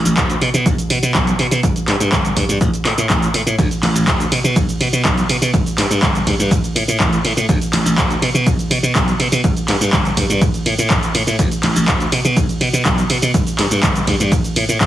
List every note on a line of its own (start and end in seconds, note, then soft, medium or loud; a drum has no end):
0.05 0.13 A1 medium
0.05 closed hi-hat soft
0.05 shaker medium
0.17 0.34 D2 medium
0.17 kick loud
0.17 clap loud
0.17 closed hi-hat medium
0.17 shaker medium
0.30 closed hi-hat soft
0.30 shaker soft
0.41 0.50 B2 loud
0.41 open hi-hat loud
0.54 0.67 B2 loud
0.54 closed hi-hat soft
0.54 shaker medium
0.66 0.74 B1 loud
0.66 kick loud
0.66 closed hi-hat medium
0.66 shaker medium
0.78 muted slap bass stroke soft
0.78 closed hi-hat soft
0.78 shaker soft
0.90 0.99 B2 medium
0.90 open hi-hat loud
1.03 1.11 B2 medium
1.03 closed hi-hat soft
1.03 shaker medium
1.15 1.32 B1 medium
1.15 kick loud
1.15 clap loud
1.15 closed hi-hat medium
1.15 shaker medium
1.27 closed hi-hat soft
1.27 shaker soft
1.39 1.48 B2 loud
1.39 open hi-hat loud
1.51 1.60 B2 loud
1.51 open hi-hat medium
1.51 shaker medium
1.63 1.72 G1 loud
1.63 kick loud
1.63 closed hi-hat medium
1.63 shaker medium
1.76 muted slap bass stroke soft
1.76 closed hi-hat soft
1.76 shaker soft
1.88 1.96 G2 medium
1.88 clap medium
1.88 open hi-hat loud
2.00 2.08 G2 medium
2.00 closed hi-hat soft
2.00 shaker medium
2.12 2.29 G1 medium
2.12 kick loud
2.12 clap loud
2.12 closed hi-hat medium
2.12 shaker medium
2.25 closed hi-hat soft
2.25 shaker soft
2.36 2.45 G2 medium
2.36 kick medium
2.36 open hi-hat loud
2.49 2.57 G2 loud
2.49 closed hi-hat soft
2.49 shaker medium
2.61 2.70 A1 medium
2.61 kick loud
2.61 closed hi-hat medium
2.61 shaker medium
2.74 closed hi-hat soft
2.74 shaker soft
2.85 2.94 A2 loud
2.85 clap medium
2.85 open hi-hat loud
2.98 3.06 A2 medium
2.98 closed hi-hat soft
2.98 shaker medium
3.10 3.27 A1 loud
3.10 kick loud
3.10 clap loud
3.10 closed hi-hat medium
3.10 shaker medium
3.22 closed hi-hat soft
3.22 shaker soft
3.34 3.43 A2 loud
3.34 open hi-hat loud
3.46 3.55 A2 medium
3.46 closed hi-hat soft
3.46 shaker medium
3.58 3.67 D2 loud
3.58 kick loud
3.58 closed hi-hat medium
3.58 ride medium
3.58 shaker medium
3.71 closed hi-hat soft
3.71 shaker soft
3.83 3.91 A1 medium
3.83 clap medium
3.83 open hi-hat loud
3.83 ride medium
3.95 4.04 A1 medium
3.95 closed hi-hat soft
3.95 shaker medium
4.07 4.24 D2 medium
4.07 kick loud
4.07 clap loud
4.07 closed hi-hat medium
4.07 ride medium
4.07 shaker medium
4.20 closed hi-hat soft
4.20 shaker soft
4.32 4.40 B2 medium
4.32 open hi-hat loud
4.32 ride medium
4.44 4.58 B2 loud
4.44 closed hi-hat soft
4.44 shaker medium
4.56 4.65 B1 loud
4.56 kick loud
4.56 closed hi-hat medium
4.56 ride medium
4.56 shaker medium
4.68 muted slap bass stroke soft
4.68 closed hi-hat soft
4.68 shaker soft
4.80 4.89 B2 medium
4.80 open hi-hat loud
4.80 ride medium
4.93 5.01 B2 medium
4.93 closed hi-hat soft
4.93 shaker medium
5.05 5.22 B1 loud
5.05 kick loud
5.05 clap loud
5.05 closed hi-hat medium
5.05 ride medium
5.05 shaker medium
5.18 closed hi-hat soft
5.18 shaker soft
5.29 5.38 B2 loud
5.29 open hi-hat loud
5.29 ride medium
5.42 5.50 B2 medium
5.42 open hi-hat medium
5.42 shaker medium
5.54 5.62 G1 loud
5.54 kick loud
5.54 closed hi-hat medium
5.54 ride medium
5.54 shaker medium
5.66 muted slap bass stroke soft
5.66 closed hi-hat soft
5.66 shaker soft
5.78 5.87 G2 medium
5.78 clap medium
5.78 open hi-hat loud
5.78 ride medium
5.90 5.99 G2 medium
5.90 closed hi-hat soft
5.90 shaker medium
6.02 6.19 G1 medium
6.02 kick loud
6.02 clap loud
6.02 closed hi-hat medium
6.02 ride medium
6.02 shaker medium
6.15 closed hi-hat soft
6.15 shaker soft
6.27 6.35 G2 loud
6.27 kick medium
6.27 open hi-hat loud
6.27 ride medium
6.39 6.53 G2 loud
6.39 closed hi-hat soft
6.39 shaker medium
6.51 6.60 A1 loud
6.51 kick loud
6.51 closed hi-hat medium
6.51 ride medium
6.51 shaker medium
6.64 closed hi-hat soft
6.64 shaker soft
6.75 6.84 A2 medium
6.75 open hi-hat loud
6.75 ride medium
6.88 6.96 A2 medium
6.88 closed hi-hat soft
6.88 shaker medium
7.00 7.17 A1 medium
7.00 kick loud
7.00 clap loud
7.00 closed hi-hat medium
7.00 ride medium
7.00 shaker medium
7.13 closed hi-hat soft
7.13 shaker soft
7.24 7.33 A2 loud
7.24 open hi-hat loud
7.24 ride medium
7.37 7.45 A2 loud
7.37 closed hi-hat soft
7.37 shaker medium
7.49 7.57 D2 loud
7.49 kick loud
7.49 closed hi-hat medium
7.49 ride medium
7.49 shaker medium
7.61 closed hi-hat soft
7.61 shaker soft
7.73 7.82 A1 medium
7.73 clap medium
7.73 open hi-hat loud
7.73 ride medium
7.85 7.94 A1 loud
7.85 closed hi-hat soft
7.85 shaker medium
7.98 8.15 D2 medium
7.98 kick loud
7.98 clap loud
7.98 closed hi-hat medium
7.98 ride medium
7.98 shaker medium
8.10 closed hi-hat soft
8.10 shaker soft
8.22 8.31 B2 loud
8.22 open hi-hat loud
8.22 ride medium
8.34 8.48 B2 loud
8.34 closed hi-hat soft
8.34 shaker medium
8.46 8.55 B1 loud
8.46 kick loud
8.46 closed hi-hat medium
8.46 ride medium
8.46 shaker medium
8.59 muted slap bass stroke soft
8.59 closed hi-hat soft
8.59 shaker soft
8.71 8.79 B2 medium
8.71 open hi-hat loud
8.71 ride medium
8.83 8.91 B2 medium
8.83 closed hi-hat soft
8.83 shaker medium
8.95 9.12 B1 loud
8.95 kick loud
8.95 clap loud
8.95 closed hi-hat medium
8.95 ride medium
8.95 shaker medium
9.08 closed hi-hat soft
9.08 shaker soft
9.19 9.28 B2 loud
9.19 open hi-hat loud
9.19 ride medium
9.32 9.40 B2 loud
9.32 open hi-hat medium
9.32 shaker medium
9.44 9.53 G1 loud
9.44 kick loud
9.44 closed hi-hat medium
9.44 ride medium
9.44 shaker medium
9.56 muted slap bass stroke soft
9.56 closed hi-hat soft
9.56 shaker soft
9.68 9.77 G2 medium
9.68 clap medium
9.68 open hi-hat loud
9.68 ride medium
9.81 9.89 G2 medium
9.81 closed hi-hat soft
9.81 shaker medium
9.93 10.10 G1 medium
9.93 kick loud
9.93 clap loud
9.93 closed hi-hat medium
9.93 ride medium
9.93 shaker medium
10.05 closed hi-hat soft
10.05 shaker soft
10.17 10.26 G2 medium
10.17 kick medium
10.17 open hi-hat loud
10.17 ride medium
10.30 10.43 G2 loud
10.30 closed hi-hat soft
10.30 shaker medium
10.41 10.50 A1 loud
10.41 kick loud
10.41 closed hi-hat medium
10.41 ride medium
10.41 shaker medium
10.54 muted slap bass stroke soft
10.54 closed hi-hat soft
10.54 shaker soft
10.66 10.74 A2 medium
10.66 open hi-hat loud
10.66 ride medium
10.78 10.92 A2 medium
10.78 closed hi-hat soft
10.78 shaker medium
10.90 10.99 A1 medium
10.90 kick loud
10.90 clap loud
10.90 closed hi-hat medium
10.90 ride medium
10.90 shaker medium
11.03 closed hi-hat soft
11.03 shaker soft
11.15 11.23 A2 medium
11.15 open hi-hat loud
11.15 ride medium
11.27 11.35 A2 medium
11.27 closed hi-hat soft
11.27 shaker medium
11.39 11.48 D2 medium
11.39 kick loud
11.39 closed hi-hat medium
11.39 ride medium
11.39 shaker medium
11.51 closed hi-hat soft
11.51 shaker soft
11.63 11.72 A1 medium
11.63 clap medium
11.63 open hi-hat loud
11.63 ride medium
11.76 11.84 A1 medium
11.76 closed hi-hat soft
11.76 shaker medium
11.88 kick loud
11.88 clap loud
11.88 closed hi-hat medium
11.88 ride medium
11.88 shaker medium
12.00 closed hi-hat soft
12.00 shaker soft
12.12 12.21 B2 medium
12.12 open hi-hat loud
12.12 ride medium
12.25 12.38 B2 loud
12.25 closed hi-hat soft
12.25 shaker medium
12.37 12.45 B1 loud
12.37 kick loud
12.37 closed hi-hat medium
12.37 ride medium
12.37 shaker medium
12.49 muted slap bass stroke soft
12.49 closed hi-hat soft
12.49 shaker soft
12.61 12.69 B2 medium
12.61 open hi-hat loud
12.61 ride medium
12.73 12.82 B2 medium
12.73 closed hi-hat soft
12.73 shaker medium
12.85 13.02 B1 loud
12.85 kick loud
12.85 clap loud
12.85 closed hi-hat medium
12.85 ride medium
12.85 shaker medium
12.98 closed hi-hat soft
12.98 shaker soft
13.10 13.18 B2 loud
13.10 open hi-hat loud
13.10 ride medium
13.22 13.30 B2 loud
13.22 open hi-hat medium
13.22 shaker medium
13.34 13.43 G1 loud
13.34 kick loud
13.34 closed hi-hat medium
13.34 ride medium
13.34 shaker medium
13.47 closed hi-hat soft
13.47 shaker soft
13.59 13.67 G2 medium
13.59 clap medium
13.59 open hi-hat loud
13.59 ride medium
13.71 13.79 G2 loud
13.71 closed hi-hat soft
13.71 shaker medium
13.83 14.00 G1 medium
13.83 kick loud
13.83 clap loud
13.83 closed hi-hat medium
13.83 ride medium
13.83 shaker medium
13.96 closed hi-hat soft
13.96 shaker soft
14.07 14.16 G2 medium
14.07 kick medium
14.07 open hi-hat loud
14.07 ride medium
14.20 14.33 G2 loud
14.20 closed hi-hat soft
14.20 shaker medium
14.32 14.40 A1 medium
14.32 kick loud
14.32 closed hi-hat medium
14.32 ride medium
14.32 shaker medium
14.44 muted slap bass stroke soft
14.44 closed hi-hat soft
14.44 shaker soft
14.56 14.65 A2 medium
14.56 open hi-hat loud
14.56 ride medium
14.69 14.77 A2 medium
14.69 closed hi-hat soft
14.69 shaker medium
14.81 14.86 A1 medium
14.81 kick loud
14.81 clap loud
14.81 closed hi-hat medium
14.81 ride medium
14.81 shaker medium